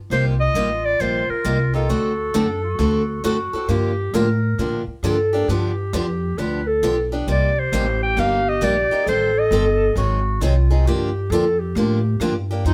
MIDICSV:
0, 0, Header, 1, 6, 480
1, 0, Start_track
1, 0, Key_signature, -2, "minor"
1, 0, Tempo, 448096
1, 116, Time_signature, 4, 2, 24, 8
1, 13645, End_track
2, 0, Start_track
2, 0, Title_t, "Clarinet"
2, 0, Program_c, 0, 71
2, 132, Note_on_c, 0, 72, 87
2, 268, Note_off_c, 0, 72, 0
2, 432, Note_on_c, 0, 75, 104
2, 910, Note_on_c, 0, 74, 94
2, 926, Note_off_c, 0, 75, 0
2, 1083, Note_on_c, 0, 72, 95
2, 1099, Note_off_c, 0, 74, 0
2, 1392, Note_on_c, 0, 70, 89
2, 1408, Note_off_c, 0, 72, 0
2, 1868, Note_off_c, 0, 70, 0
2, 1878, Note_on_c, 0, 69, 77
2, 3747, Note_off_c, 0, 69, 0
2, 7831, Note_on_c, 0, 74, 87
2, 8135, Note_on_c, 0, 72, 90
2, 8152, Note_off_c, 0, 74, 0
2, 8595, Note_off_c, 0, 72, 0
2, 8602, Note_on_c, 0, 79, 92
2, 8781, Note_on_c, 0, 77, 106
2, 8797, Note_off_c, 0, 79, 0
2, 9093, Note_on_c, 0, 75, 93
2, 9109, Note_off_c, 0, 77, 0
2, 9252, Note_on_c, 0, 74, 95
2, 9268, Note_off_c, 0, 75, 0
2, 9723, Note_off_c, 0, 74, 0
2, 9733, Note_on_c, 0, 72, 91
2, 10057, Note_on_c, 0, 75, 88
2, 10073, Note_off_c, 0, 72, 0
2, 10691, Note_off_c, 0, 75, 0
2, 13645, End_track
3, 0, Start_track
3, 0, Title_t, "Clarinet"
3, 0, Program_c, 1, 71
3, 104, Note_on_c, 1, 65, 99
3, 2028, Note_on_c, 1, 66, 98
3, 2044, Note_off_c, 1, 65, 0
3, 2520, Note_on_c, 1, 62, 92
3, 2536, Note_off_c, 1, 66, 0
3, 2821, Note_off_c, 1, 62, 0
3, 2827, Note_on_c, 1, 66, 91
3, 3432, Note_off_c, 1, 66, 0
3, 3471, Note_on_c, 1, 66, 105
3, 3954, Note_on_c, 1, 67, 110
3, 3970, Note_off_c, 1, 66, 0
3, 4441, Note_on_c, 1, 70, 100
3, 4457, Note_off_c, 1, 67, 0
3, 5166, Note_off_c, 1, 70, 0
3, 5391, Note_on_c, 1, 69, 93
3, 5875, Note_on_c, 1, 67, 93
3, 5891, Note_off_c, 1, 69, 0
3, 6834, Note_on_c, 1, 71, 104
3, 6850, Note_off_c, 1, 67, 0
3, 7142, Note_on_c, 1, 69, 90
3, 7158, Note_off_c, 1, 71, 0
3, 7623, Note_off_c, 1, 69, 0
3, 7792, Note_on_c, 1, 67, 106
3, 9674, Note_on_c, 1, 68, 83
3, 9690, Note_off_c, 1, 67, 0
3, 9717, Note_on_c, 1, 69, 110
3, 9734, Note_off_c, 1, 68, 0
3, 10676, Note_off_c, 1, 69, 0
3, 10682, Note_on_c, 1, 66, 99
3, 11153, Note_on_c, 1, 65, 94
3, 11169, Note_off_c, 1, 66, 0
3, 11637, Note_on_c, 1, 67, 99
3, 11653, Note_off_c, 1, 65, 0
3, 12117, Note_on_c, 1, 69, 110
3, 12133, Note_off_c, 1, 67, 0
3, 12419, Note_on_c, 1, 67, 87
3, 12435, Note_off_c, 1, 69, 0
3, 13322, Note_off_c, 1, 67, 0
3, 13566, Note_on_c, 1, 63, 104
3, 13645, Note_off_c, 1, 63, 0
3, 13645, End_track
4, 0, Start_track
4, 0, Title_t, "Steel-string acoustic guitar"
4, 0, Program_c, 2, 25
4, 120, Note_on_c, 2, 48, 64
4, 122, Note_on_c, 2, 55, 68
4, 125, Note_on_c, 2, 58, 64
4, 130, Note_on_c, 2, 63, 64
4, 131, Note_on_c, 2, 67, 78
4, 351, Note_off_c, 2, 48, 0
4, 352, Note_off_c, 2, 55, 0
4, 354, Note_off_c, 2, 58, 0
4, 357, Note_off_c, 2, 63, 0
4, 357, Note_off_c, 2, 67, 0
4, 591, Note_on_c, 2, 48, 77
4, 592, Note_on_c, 2, 55, 82
4, 596, Note_on_c, 2, 58, 80
4, 604, Note_on_c, 2, 63, 86
4, 604, Note_on_c, 2, 67, 89
4, 717, Note_off_c, 2, 48, 0
4, 717, Note_off_c, 2, 55, 0
4, 719, Note_off_c, 2, 58, 0
4, 723, Note_off_c, 2, 63, 0
4, 723, Note_off_c, 2, 67, 0
4, 1069, Note_on_c, 2, 48, 57
4, 1073, Note_on_c, 2, 55, 57
4, 1077, Note_on_c, 2, 63, 64
4, 1078, Note_on_c, 2, 58, 62
4, 1081, Note_on_c, 2, 67, 64
4, 1305, Note_off_c, 2, 48, 0
4, 1307, Note_off_c, 2, 55, 0
4, 1309, Note_off_c, 2, 63, 0
4, 1310, Note_off_c, 2, 58, 0
4, 1311, Note_off_c, 2, 67, 0
4, 1548, Note_on_c, 2, 48, 91
4, 1553, Note_on_c, 2, 55, 86
4, 1554, Note_on_c, 2, 58, 79
4, 1558, Note_on_c, 2, 63, 89
4, 1560, Note_on_c, 2, 67, 82
4, 1675, Note_off_c, 2, 48, 0
4, 1677, Note_off_c, 2, 55, 0
4, 1677, Note_off_c, 2, 58, 0
4, 1680, Note_off_c, 2, 63, 0
4, 1681, Note_off_c, 2, 67, 0
4, 1860, Note_on_c, 2, 67, 53
4, 1869, Note_on_c, 2, 63, 55
4, 1882, Note_on_c, 2, 58, 48
4, 2025, Note_off_c, 2, 67, 0
4, 2027, Note_off_c, 2, 58, 0
4, 2029, Note_off_c, 2, 63, 0
4, 2029, Note_on_c, 2, 50, 61
4, 2031, Note_on_c, 2, 60, 65
4, 2035, Note_on_c, 2, 57, 73
4, 2036, Note_on_c, 2, 66, 68
4, 2039, Note_on_c, 2, 69, 69
4, 2265, Note_off_c, 2, 50, 0
4, 2266, Note_off_c, 2, 60, 0
4, 2268, Note_off_c, 2, 57, 0
4, 2268, Note_off_c, 2, 66, 0
4, 2270, Note_off_c, 2, 69, 0
4, 2507, Note_on_c, 2, 50, 94
4, 2509, Note_on_c, 2, 57, 83
4, 2510, Note_on_c, 2, 60, 89
4, 2512, Note_on_c, 2, 66, 93
4, 2515, Note_on_c, 2, 69, 104
4, 2634, Note_off_c, 2, 50, 0
4, 2635, Note_off_c, 2, 57, 0
4, 2636, Note_off_c, 2, 60, 0
4, 2636, Note_off_c, 2, 66, 0
4, 2638, Note_off_c, 2, 69, 0
4, 2985, Note_on_c, 2, 50, 59
4, 2989, Note_on_c, 2, 57, 69
4, 2993, Note_on_c, 2, 60, 69
4, 2996, Note_on_c, 2, 66, 70
4, 2998, Note_on_c, 2, 69, 63
4, 3223, Note_off_c, 2, 50, 0
4, 3225, Note_off_c, 2, 57, 0
4, 3227, Note_off_c, 2, 60, 0
4, 3228, Note_off_c, 2, 66, 0
4, 3230, Note_off_c, 2, 69, 0
4, 3468, Note_on_c, 2, 50, 89
4, 3474, Note_on_c, 2, 57, 88
4, 3476, Note_on_c, 2, 60, 89
4, 3478, Note_on_c, 2, 66, 90
4, 3480, Note_on_c, 2, 69, 103
4, 3595, Note_off_c, 2, 50, 0
4, 3597, Note_off_c, 2, 57, 0
4, 3598, Note_off_c, 2, 60, 0
4, 3599, Note_off_c, 2, 66, 0
4, 3601, Note_off_c, 2, 69, 0
4, 3784, Note_on_c, 2, 69, 56
4, 3798, Note_on_c, 2, 66, 52
4, 3807, Note_on_c, 2, 60, 49
4, 3947, Note_off_c, 2, 69, 0
4, 3948, Note_on_c, 2, 50, 74
4, 3949, Note_off_c, 2, 60, 0
4, 3949, Note_on_c, 2, 53, 66
4, 3952, Note_off_c, 2, 66, 0
4, 3954, Note_on_c, 2, 58, 74
4, 3956, Note_on_c, 2, 62, 72
4, 3961, Note_on_c, 2, 67, 70
4, 4185, Note_off_c, 2, 50, 0
4, 4185, Note_off_c, 2, 53, 0
4, 4187, Note_off_c, 2, 58, 0
4, 4189, Note_off_c, 2, 62, 0
4, 4191, Note_off_c, 2, 67, 0
4, 4432, Note_on_c, 2, 50, 87
4, 4440, Note_on_c, 2, 53, 88
4, 4440, Note_on_c, 2, 58, 86
4, 4441, Note_on_c, 2, 62, 94
4, 4446, Note_on_c, 2, 67, 106
4, 4557, Note_off_c, 2, 50, 0
4, 4560, Note_off_c, 2, 58, 0
4, 4561, Note_off_c, 2, 53, 0
4, 4561, Note_off_c, 2, 62, 0
4, 4563, Note_off_c, 2, 67, 0
4, 4917, Note_on_c, 2, 50, 65
4, 4918, Note_on_c, 2, 53, 62
4, 4923, Note_on_c, 2, 58, 70
4, 4926, Note_on_c, 2, 62, 65
4, 4932, Note_on_c, 2, 67, 61
4, 5149, Note_off_c, 2, 50, 0
4, 5149, Note_off_c, 2, 53, 0
4, 5152, Note_off_c, 2, 58, 0
4, 5153, Note_off_c, 2, 62, 0
4, 5157, Note_off_c, 2, 67, 0
4, 5396, Note_on_c, 2, 50, 85
4, 5396, Note_on_c, 2, 53, 85
4, 5403, Note_on_c, 2, 58, 88
4, 5406, Note_on_c, 2, 62, 93
4, 5408, Note_on_c, 2, 67, 90
4, 5518, Note_off_c, 2, 50, 0
4, 5518, Note_off_c, 2, 53, 0
4, 5522, Note_off_c, 2, 58, 0
4, 5523, Note_off_c, 2, 62, 0
4, 5524, Note_off_c, 2, 67, 0
4, 5708, Note_on_c, 2, 67, 53
4, 5721, Note_on_c, 2, 62, 59
4, 5727, Note_on_c, 2, 58, 50
4, 5869, Note_off_c, 2, 67, 0
4, 5875, Note_off_c, 2, 62, 0
4, 5878, Note_off_c, 2, 58, 0
4, 5883, Note_on_c, 2, 50, 70
4, 5888, Note_on_c, 2, 53, 76
4, 5888, Note_on_c, 2, 59, 61
4, 5892, Note_on_c, 2, 62, 79
4, 5892, Note_on_c, 2, 67, 76
4, 6112, Note_off_c, 2, 50, 0
4, 6114, Note_off_c, 2, 59, 0
4, 6115, Note_off_c, 2, 53, 0
4, 6117, Note_off_c, 2, 62, 0
4, 6117, Note_off_c, 2, 67, 0
4, 6356, Note_on_c, 2, 50, 93
4, 6361, Note_on_c, 2, 53, 80
4, 6362, Note_on_c, 2, 59, 94
4, 6364, Note_on_c, 2, 62, 100
4, 6365, Note_on_c, 2, 67, 92
4, 6478, Note_off_c, 2, 50, 0
4, 6481, Note_off_c, 2, 53, 0
4, 6482, Note_off_c, 2, 59, 0
4, 6483, Note_off_c, 2, 62, 0
4, 6483, Note_off_c, 2, 67, 0
4, 6836, Note_on_c, 2, 50, 59
4, 6840, Note_on_c, 2, 53, 64
4, 6840, Note_on_c, 2, 59, 65
4, 6846, Note_on_c, 2, 67, 61
4, 6847, Note_on_c, 2, 62, 70
4, 7069, Note_off_c, 2, 50, 0
4, 7071, Note_off_c, 2, 53, 0
4, 7071, Note_off_c, 2, 59, 0
4, 7074, Note_off_c, 2, 62, 0
4, 7074, Note_off_c, 2, 67, 0
4, 7315, Note_on_c, 2, 50, 81
4, 7316, Note_on_c, 2, 53, 77
4, 7319, Note_on_c, 2, 59, 82
4, 7323, Note_on_c, 2, 62, 82
4, 7328, Note_on_c, 2, 67, 103
4, 7438, Note_off_c, 2, 50, 0
4, 7439, Note_off_c, 2, 53, 0
4, 7440, Note_off_c, 2, 59, 0
4, 7442, Note_off_c, 2, 62, 0
4, 7445, Note_off_c, 2, 67, 0
4, 7627, Note_on_c, 2, 67, 59
4, 7635, Note_on_c, 2, 62, 53
4, 7644, Note_on_c, 2, 59, 47
4, 7789, Note_off_c, 2, 67, 0
4, 7793, Note_off_c, 2, 62, 0
4, 7795, Note_on_c, 2, 48, 69
4, 7797, Note_off_c, 2, 59, 0
4, 7799, Note_on_c, 2, 55, 64
4, 7802, Note_on_c, 2, 58, 69
4, 7804, Note_on_c, 2, 63, 64
4, 7805, Note_on_c, 2, 67, 70
4, 8028, Note_off_c, 2, 48, 0
4, 8031, Note_off_c, 2, 55, 0
4, 8032, Note_off_c, 2, 58, 0
4, 8033, Note_off_c, 2, 63, 0
4, 8033, Note_off_c, 2, 67, 0
4, 8277, Note_on_c, 2, 48, 85
4, 8280, Note_on_c, 2, 55, 95
4, 8280, Note_on_c, 2, 58, 91
4, 8286, Note_on_c, 2, 63, 100
4, 8290, Note_on_c, 2, 67, 98
4, 8400, Note_off_c, 2, 48, 0
4, 8401, Note_off_c, 2, 55, 0
4, 8401, Note_off_c, 2, 58, 0
4, 8404, Note_off_c, 2, 63, 0
4, 8406, Note_off_c, 2, 67, 0
4, 8751, Note_on_c, 2, 48, 60
4, 8759, Note_on_c, 2, 55, 65
4, 8759, Note_on_c, 2, 58, 65
4, 8765, Note_on_c, 2, 63, 68
4, 8770, Note_on_c, 2, 67, 65
4, 8987, Note_off_c, 2, 48, 0
4, 8990, Note_off_c, 2, 55, 0
4, 8990, Note_off_c, 2, 58, 0
4, 8993, Note_off_c, 2, 63, 0
4, 8996, Note_off_c, 2, 67, 0
4, 9224, Note_on_c, 2, 48, 75
4, 9230, Note_on_c, 2, 58, 83
4, 9231, Note_on_c, 2, 55, 84
4, 9237, Note_on_c, 2, 67, 96
4, 9238, Note_on_c, 2, 63, 86
4, 9353, Note_off_c, 2, 48, 0
4, 9356, Note_off_c, 2, 58, 0
4, 9357, Note_off_c, 2, 55, 0
4, 9360, Note_off_c, 2, 63, 0
4, 9360, Note_off_c, 2, 67, 0
4, 9546, Note_on_c, 2, 67, 58
4, 9559, Note_on_c, 2, 63, 57
4, 9565, Note_on_c, 2, 58, 46
4, 9708, Note_off_c, 2, 67, 0
4, 9715, Note_off_c, 2, 63, 0
4, 9718, Note_off_c, 2, 58, 0
4, 9719, Note_on_c, 2, 51, 66
4, 9724, Note_on_c, 2, 55, 65
4, 9726, Note_on_c, 2, 60, 70
4, 9729, Note_on_c, 2, 69, 67
4, 9731, Note_on_c, 2, 67, 67
4, 9951, Note_off_c, 2, 51, 0
4, 9953, Note_off_c, 2, 55, 0
4, 9954, Note_off_c, 2, 60, 0
4, 9956, Note_off_c, 2, 69, 0
4, 9957, Note_off_c, 2, 67, 0
4, 10196, Note_on_c, 2, 51, 90
4, 10198, Note_on_c, 2, 55, 88
4, 10204, Note_on_c, 2, 60, 86
4, 10205, Note_on_c, 2, 67, 95
4, 10208, Note_on_c, 2, 69, 97
4, 10319, Note_off_c, 2, 51, 0
4, 10320, Note_off_c, 2, 55, 0
4, 10323, Note_off_c, 2, 60, 0
4, 10324, Note_off_c, 2, 67, 0
4, 10325, Note_off_c, 2, 69, 0
4, 10675, Note_on_c, 2, 51, 69
4, 10681, Note_on_c, 2, 54, 60
4, 10683, Note_on_c, 2, 60, 64
4, 10685, Note_on_c, 2, 63, 60
4, 10688, Note_on_c, 2, 68, 70
4, 10909, Note_off_c, 2, 51, 0
4, 10912, Note_off_c, 2, 54, 0
4, 10913, Note_off_c, 2, 60, 0
4, 10914, Note_off_c, 2, 63, 0
4, 10915, Note_off_c, 2, 68, 0
4, 11155, Note_on_c, 2, 51, 79
4, 11158, Note_on_c, 2, 54, 94
4, 11164, Note_on_c, 2, 60, 91
4, 11168, Note_on_c, 2, 68, 96
4, 11169, Note_on_c, 2, 63, 96
4, 11279, Note_off_c, 2, 51, 0
4, 11280, Note_off_c, 2, 54, 0
4, 11284, Note_off_c, 2, 60, 0
4, 11286, Note_off_c, 2, 63, 0
4, 11286, Note_off_c, 2, 68, 0
4, 11467, Note_on_c, 2, 68, 62
4, 11475, Note_on_c, 2, 63, 55
4, 11484, Note_on_c, 2, 60, 50
4, 11629, Note_off_c, 2, 68, 0
4, 11633, Note_off_c, 2, 63, 0
4, 11638, Note_off_c, 2, 60, 0
4, 11647, Note_on_c, 2, 50, 62
4, 11648, Note_on_c, 2, 53, 68
4, 11649, Note_on_c, 2, 58, 75
4, 11653, Note_on_c, 2, 62, 78
4, 11659, Note_on_c, 2, 67, 84
4, 11875, Note_off_c, 2, 50, 0
4, 11876, Note_off_c, 2, 53, 0
4, 11876, Note_off_c, 2, 58, 0
4, 11878, Note_off_c, 2, 62, 0
4, 11881, Note_off_c, 2, 67, 0
4, 12127, Note_on_c, 2, 50, 84
4, 12128, Note_on_c, 2, 53, 105
4, 12133, Note_on_c, 2, 58, 90
4, 12140, Note_on_c, 2, 62, 94
4, 12143, Note_on_c, 2, 67, 102
4, 12245, Note_off_c, 2, 50, 0
4, 12246, Note_off_c, 2, 53, 0
4, 12248, Note_off_c, 2, 58, 0
4, 12252, Note_off_c, 2, 62, 0
4, 12253, Note_off_c, 2, 67, 0
4, 12602, Note_on_c, 2, 50, 66
4, 12604, Note_on_c, 2, 53, 62
4, 12609, Note_on_c, 2, 58, 72
4, 12611, Note_on_c, 2, 62, 68
4, 12614, Note_on_c, 2, 67, 76
4, 12833, Note_off_c, 2, 50, 0
4, 12834, Note_off_c, 2, 53, 0
4, 12837, Note_off_c, 2, 58, 0
4, 12838, Note_off_c, 2, 62, 0
4, 12839, Note_off_c, 2, 67, 0
4, 13076, Note_on_c, 2, 50, 86
4, 13083, Note_on_c, 2, 53, 95
4, 13083, Note_on_c, 2, 58, 87
4, 13088, Note_on_c, 2, 62, 92
4, 13088, Note_on_c, 2, 67, 91
4, 13200, Note_off_c, 2, 50, 0
4, 13204, Note_off_c, 2, 53, 0
4, 13204, Note_off_c, 2, 58, 0
4, 13206, Note_off_c, 2, 62, 0
4, 13206, Note_off_c, 2, 67, 0
4, 13397, Note_on_c, 2, 67, 60
4, 13409, Note_on_c, 2, 62, 55
4, 13416, Note_on_c, 2, 58, 47
4, 13553, Note_off_c, 2, 58, 0
4, 13555, Note_off_c, 2, 67, 0
4, 13557, Note_on_c, 2, 53, 64
4, 13557, Note_on_c, 2, 60, 73
4, 13559, Note_off_c, 2, 62, 0
4, 13563, Note_on_c, 2, 63, 70
4, 13570, Note_on_c, 2, 68, 72
4, 13645, Note_off_c, 2, 53, 0
4, 13645, Note_off_c, 2, 60, 0
4, 13645, Note_off_c, 2, 63, 0
4, 13645, Note_off_c, 2, 68, 0
4, 13645, End_track
5, 0, Start_track
5, 0, Title_t, "Upright bass"
5, 0, Program_c, 3, 32
5, 108, Note_on_c, 3, 36, 83
5, 574, Note_off_c, 3, 36, 0
5, 580, Note_on_c, 3, 33, 85
5, 1053, Note_off_c, 3, 33, 0
5, 1071, Note_on_c, 3, 34, 84
5, 1361, Note_off_c, 3, 34, 0
5, 1546, Note_on_c, 3, 36, 76
5, 2015, Note_off_c, 3, 36, 0
5, 2032, Note_on_c, 3, 38, 73
5, 2498, Note_off_c, 3, 38, 0
5, 2513, Note_on_c, 3, 42, 93
5, 2979, Note_off_c, 3, 42, 0
5, 2985, Note_on_c, 3, 38, 95
5, 3455, Note_off_c, 3, 38, 0
5, 3470, Note_on_c, 3, 42, 77
5, 3760, Note_off_c, 3, 42, 0
5, 3945, Note_on_c, 3, 43, 84
5, 4415, Note_off_c, 3, 43, 0
5, 4428, Note_on_c, 3, 45, 92
5, 4896, Note_off_c, 3, 45, 0
5, 4911, Note_on_c, 3, 46, 87
5, 5200, Note_off_c, 3, 46, 0
5, 5385, Note_on_c, 3, 43, 85
5, 5855, Note_off_c, 3, 43, 0
5, 5869, Note_on_c, 3, 43, 80
5, 6337, Note_off_c, 3, 43, 0
5, 6353, Note_on_c, 3, 41, 98
5, 6819, Note_off_c, 3, 41, 0
5, 6835, Note_on_c, 3, 38, 82
5, 7300, Note_off_c, 3, 38, 0
5, 7310, Note_on_c, 3, 35, 77
5, 7778, Note_off_c, 3, 35, 0
5, 7789, Note_on_c, 3, 36, 78
5, 8257, Note_off_c, 3, 36, 0
5, 8271, Note_on_c, 3, 33, 89
5, 8738, Note_off_c, 3, 33, 0
5, 8747, Note_on_c, 3, 31, 91
5, 9216, Note_off_c, 3, 31, 0
5, 9229, Note_on_c, 3, 34, 92
5, 9520, Note_off_c, 3, 34, 0
5, 9709, Note_on_c, 3, 33, 84
5, 10178, Note_off_c, 3, 33, 0
5, 10184, Note_on_c, 3, 31, 96
5, 10655, Note_off_c, 3, 31, 0
5, 10664, Note_on_c, 3, 32, 92
5, 11135, Note_off_c, 3, 32, 0
5, 11147, Note_on_c, 3, 36, 84
5, 11614, Note_off_c, 3, 36, 0
5, 11621, Note_on_c, 3, 43, 83
5, 12094, Note_off_c, 3, 43, 0
5, 12104, Note_on_c, 3, 41, 96
5, 12576, Note_off_c, 3, 41, 0
5, 12588, Note_on_c, 3, 45, 96
5, 13058, Note_off_c, 3, 45, 0
5, 13066, Note_on_c, 3, 43, 93
5, 13537, Note_off_c, 3, 43, 0
5, 13548, Note_on_c, 3, 41, 85
5, 13645, Note_off_c, 3, 41, 0
5, 13645, End_track
6, 0, Start_track
6, 0, Title_t, "Muted upright bass strokes"
6, 1384, Note_on_c, 9, 29, 37
6, 1491, Note_off_c, 9, 29, 0
6, 3781, Note_on_c, 9, 29, 40
6, 3888, Note_off_c, 9, 29, 0
6, 5216, Note_on_c, 9, 29, 38
6, 5323, Note_off_c, 9, 29, 0
6, 9544, Note_on_c, 9, 29, 38
6, 9651, Note_off_c, 9, 29, 0
6, 13645, End_track
0, 0, End_of_file